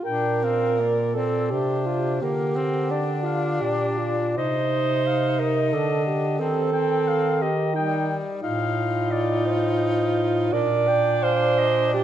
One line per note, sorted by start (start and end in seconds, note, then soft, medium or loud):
0.03 1.53 A#2 soft
0.03 0.44 D4 soft
0.03 1.15 A#4 medium
0.03 0.45 G5 medium
0.43 0.80 C4 soft
0.43 0.82 F5 soft
0.79 1.15 A#3 soft
0.79 1.15 D5 soft
1.14 1.50 C4 soft
1.14 1.52 A4 medium
1.14 1.53 D5 soft
1.50 2.21 C3 soft
1.50 2.23 D4 soft
1.50 1.87 G4 medium
1.50 2.24 C5 medium
1.86 2.20 F4 medium
2.21 3.58 D3 soft
2.21 2.57 A#3 soft
2.21 3.24 G4 medium
2.21 2.92 A#4 medium
2.56 2.92 C4 soft
2.91 4.37 D4 soft
2.91 3.26 D5 medium
3.23 3.61 F4 medium
3.23 3.63 F5 soft
3.60 4.36 A#2 soft
3.60 4.00 G4 medium
3.60 4.37 D5 medium
3.98 4.38 F4 soft
4.37 5.75 C3 soft
4.37 5.75 D#4 soft
4.37 5.41 C5 medium
4.37 5.08 D#5 medium
5.07 5.41 F5 medium
5.39 5.74 A#4 medium
5.39 6.39 D#5 medium
5.73 6.41 D3 soft
5.73 6.41 D4 soft
5.73 6.06 A4 medium
6.06 6.41 G4 medium
6.39 8.26 D#3 soft
6.39 6.72 C4 soft
6.39 7.44 A4 medium
6.39 6.72 C5 medium
6.73 7.47 C4 soft
6.73 7.09 G5 soft
7.08 7.43 F5 medium
7.42 7.75 G4 medium
7.42 7.75 D#5 medium
7.74 8.39 G3 soft
7.74 8.08 D#4 medium
7.74 8.18 G5 medium
8.42 10.48 A2 medium
8.42 10.48 D#4 medium
8.42 10.54 F4 medium
8.42 9.12 F5 medium
9.11 9.47 D5 medium
9.46 10.52 C5 medium
10.53 12.04 A#2 medium
10.53 12.04 D4 medium
10.53 10.89 A#4 medium
10.53 11.24 D5 medium
10.88 11.25 G5 medium
11.23 11.93 C5 medium
11.23 11.60 F5 medium
11.58 11.96 D#5 medium
11.93 12.04 G4 medium
11.93 12.04 D5 medium